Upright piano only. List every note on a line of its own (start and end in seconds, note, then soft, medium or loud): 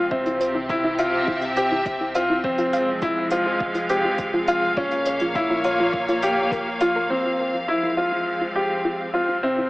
0.11 0.54 C4 medium
0.70 0.91 E4 medium
0.99 1.41 F4 medium
1.57 1.99 G4 medium
2.15 2.36 F4 medium
2.44 2.87 C4 medium
3.02 3.24 E4 medium
3.31 3.74 F4 medium
3.90 4.32 G4 medium
4.48 4.69 F4 medium
4.77 5.20 C#4 medium
5.35 5.57 E4 medium
5.64 6.07 F4 medium
6.23 6.65 G4 medium
6.81 7.02 F4 medium
7.10 7.53 C4 medium
7.68 7.90 E4 medium
7.97 8.40 F4 medium
8.55 8.98 G4 medium
9.14 9.35 F4 medium
9.43 9.70 C4 medium